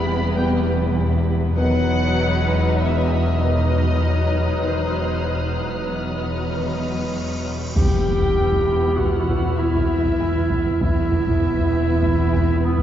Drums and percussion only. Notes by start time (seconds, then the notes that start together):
7.76 taiko
8.07 taiko low
8.22 taiko
8.37 taiko low
8.52 taiko
8.99 taiko
9.29 taiko
9.75 taiko
10.05 taiko
10.20 taiko low
10.36 taiko low
10.50 taiko
10.66 taiko low
10.81 taiko
11.12 taiko low
11.27 taiko
11.42 taiko low
11.57 taiko
12.03 taiko
12.33 taiko
12.79 taiko